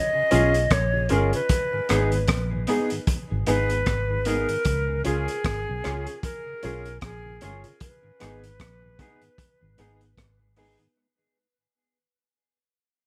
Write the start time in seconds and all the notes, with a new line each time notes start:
Already playing: D#5
0.15 C#3
0.31 B1 G#3 C#4 F4 G#4, closed hi-hat
0.54 closed hi-hat
0.70 A#1 C#5, kick, cross-stick, closed hi-hat
0.93 C#3 F4 G#4
1.09 G1 G#3 C#4 F4 G#4 A#4, closed hi-hat
1.33 C#3 B4, closed hi-hat
1.49 kick, closed hi-hat
1.73 G#2 D#3
1.89 G#1 G#3 B3 D#4 G#4, cross-stick, closed hi-hat
2.12 G#2 D#3, closed hi-hat
2.28 A#1, kick, cross-stick, closed hi-hat
2.52 G#2 D#3, muted clean electric guitar stroke
2.67 G#3 B3 D#4 G#4, closed hi-hat
2.90 G#2 D#3, closed hi-hat
3.07 kick, closed hi-hat
3.31 G#1 G#2 D#3
3.47 G#1 G#3 B3 D#4 G#4 B4, closed hi-hat
3.70 closed hi-hat
3.86 G#1, kick, cross-stick, closed hi-hat
4.10 G#2 D#3 D#4 G#4
4.25 G#3 B3 D#4 G#4 A#4, closed hi-hat
4.49 G#2 D#3, closed hi-hat
4.65 C#2, kick, closed hi-hat
4.89 C#3
5.04 C#2 G#3 C#4 F4 G#4, closed hi-hat
5.28 C#3, closed hi-hat
5.44 G#1, kick, cross-stick, closed hi-hat
5.67 B1 C#3, muted clean electric guitar stroke
5.84 C#2 G#3 C#4 F4 G#4, cross-stick, closed hi-hat
6.07 C#3, closed hi-hat
6.23 A#4, kick, closed hi-hat
6.46 C#3
6.63 B1 G#3 C#4 F4 G#4, closed hi-hat
6.85 closed hi-hat
7.01 A#1 G#4, kick, cross-stick, closed hi-hat
7.25 C#3 F4 G#4
7.41 G1 G#3 C#4 F4 G#4, closed hi-hat
7.64 C#3, muted clean electric guitar stroke, closed hi-hat
7.80 B4, kick, closed hi-hat
8.03 G#2 D#3
8.20 G#1 G#3 B3 D#4 G#4, cross-stick, closed hi-hat
8.43 G#2 D#3, closed hi-hat
8.60 A#1, kick, cross-stick, closed hi-hat
8.82 G#2 D#3, muted clean electric guitar stroke
8.98 G#3 B3 D#4 G#4, kick, closed hi-hat
9.21 G#2 D#3, closed hi-hat
9.38 kick, closed hi-hat
9.61 G#1 G#2 D#3
9.77 G#1 G#3 B3 D#4 G#4, closed hi-hat
10.01 closed hi-hat
10.17 G#1, kick, cross-stick, closed hi-hat
10.40 G#2 D#3
10.56 G#3 B3 D#4 G#4, open hi-hat
10.79 G#2 D#3, closed hi-hat